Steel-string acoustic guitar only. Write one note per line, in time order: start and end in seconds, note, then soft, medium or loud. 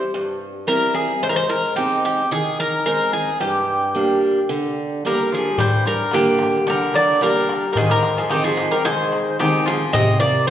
0.14 0.67 G2 medium
0.67 1.11 G3 soft
0.67 1.11 C4 soft
0.67 1.12 E4 medium
1.23 1.76 G#2 medium
1.78 2.21 G#3 soft
1.78 2.21 C4 soft
1.78 2.21 D#4 soft
2.31 2.84 D#3 medium
2.86 3.30 G#3 soft
2.86 3.30 C4 soft
2.86 3.30 D#4 soft
3.41 3.94 G2 medium
3.95 4.38 G3 soft
3.95 4.39 A#3 soft
3.95 4.39 D4 medium
4.49 5.02 D3 medium
5.05 5.48 G3 soft
5.05 5.48 A#3 soft
5.05 5.48 D4 soft
5.58 6.11 G2 medium
6.13 6.56 G3 soft
6.13 6.57 A#3 soft
6.13 6.57 D4 soft
6.67 7.20 D3 medium
7.21 7.65 G3 soft
7.21 7.65 A#3 soft
7.21 7.65 D4 medium
7.77 8.29 G#2 medium
8.31 8.74 G#3 soft
8.31 8.74 C4 soft
8.31 8.75 D#4 soft
8.85 9.38 D#3 medium
9.40 9.83 G#3 soft
9.40 9.83 C4 soft
9.40 9.83 D#4 soft
9.95 10.47 C3 medium